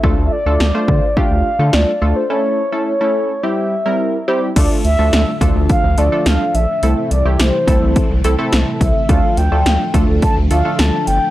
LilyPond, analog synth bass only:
\new Staff \with { instrumentName = "Analog synth bass" } { \clef bass \time 4/4 \key d \minor \tempo 4 = 106 d,16 d,16 r16 d,16 d,16 r16 d16 r8 d,16 r16 d16 d,16 r16 d,16 r16 | r1 | d,16 r16 d,16 d,16 d,16 r16 d,16 d,16 r16 d,16 d,16 r16 d,16 r16 bes,,16 r16 | c,16 r16 c,16 c,16 c,16 r16 c,16 c,16 r16 c,16 c,16 r16 c,16 r16 c,16 r16 |
d,16 r16 d,16 d,16 d,16 r16 d,16 d,16 r16 d,16 d,16 r16 d,16 r16 g,,16 r16 | }